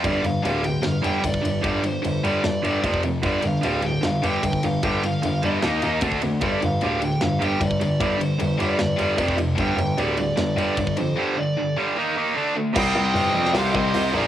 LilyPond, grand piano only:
\new Staff \with { instrumentName = "Grand piano" } { \clef bass \time 4/4 \key g \minor \tempo 4 = 151 g,,8 g,,8 d,,4 g,,8 g,,8 g,,8 g,,8 | g,,4 g,,8 g,,8 g,,8 g,,8 f,,8 f,,8 | g,,8 g,,8 d,,4 g,,8 g,,8 g,,8 g,,8 | g,,4 g,,8 g,,8 ees,8 ees,8 d,8 d,8 |
g,,8 g,,8 d,,4 g,,8 g,,8 g,,8 g,,8 | g,,4 g,,8 g,,8 g,,8 g,,8 f,,8 f,,8 | g,,8 g,,8 d,,4 g,,8 g,,8 g,,8 f,8 | r1 |
c,8 c,8 g,,8 f,8 c,8 c,8 c,8 bes,,8 | }